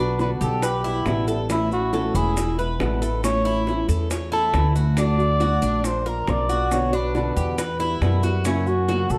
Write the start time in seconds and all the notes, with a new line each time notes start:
Already playing: B1 D4 F#4 B4
0.00 B3 D4
0.19 B2 D3 B3 D4 F#4 B4, high bongo, maracas
0.41 B1 G4 A4, maracas
0.62 G4 B4, muted nylon-string guitar stroke, high bongo, maracas
0.84 G3 B3 E4, high bongo, maracas
1.06 A1 B2 E3 G3 B3 E4, high bongo, low bongo, maracas
1.27 G3 B3 E4 A4, high bongo, maracas
1.49 E3 A3 C#4 E4, high bongo, maracas
1.71 A3 C#4 E4 F#4, maracas
1.93 E3 A3 C#4 E4 A4, high bongo, maracas
2.14 E1 E4 G#4, maracas
2.37 muted nylon-string guitar stroke, high bongo, maracas
2.58 G#3 B3 E4 B4, maracas
2.79 A1 B2 D3 G#3 B3 E4 B4, high bongo, low bongo, maracas
3.01 G#3 B3 E4 A4, maracas
3.23 E3 A3 C#4 E4 C#5, high bongo, maracas
3.45 A3 C#4 E4, high bongo, maracas
3.66 E3 A3 C#4 E4, high bongo, maracas
3.89 E2 A4, maracas
4.10 C#5, muted nylon-string guitar stroke, high bongo, maracas
4.32 A3 C#4 E4 A4, high bongo, maracas
4.53 D2 E3 A3 C#4 E4, high bongo, low bongo, maracas
4.75 A3 C#4 E4 F#4, high bongo, maracas
4.96 D3 A3 D4 F#4 D5, high bongo, maracas
5.18 A3 D4 F#4, maracas
5.40 D3 A3 D4 F#4, high bongo, maracas
5.62 A#1 D4, maracas
5.84 C5, muted nylon-string guitar stroke, high bongo, maracas
6.05 A#3 D4 F4 A#4, maracas
6.27 B1 F3 A#3 D4 F4 D5, high bongo, low bongo, maracas
6.49 A#3 D4 F4 F#4, maracas
6.71 B2 D3 B3 D4 F#4 C#5, high bongo, maracas
6.92 B3 D4 F#4 B4, high bongo, maracas
7.14 B2 D3 B3 D4 F#4 B4, high bongo, maracas
7.36 E2 G4, maracas
7.58 B4, muted nylon-string guitar stroke, high bongo, maracas
7.79 G3 B3 E4, high bongo, maracas
8.01 F#2 B2 E3 G3 B3 E4, high bongo, low bongo, maracas
8.23 G3 B3 E4 F#4, high bongo, maracas
8.45 C#3 F#3 A#3 C#4 E4 F#4, high bongo, maracas
8.66 A#3 C#4 F#4, maracas
8.88 C#3 F#3 A#3 C#4 F#4, high bongo, maracas
9.10 B1 A4, maracas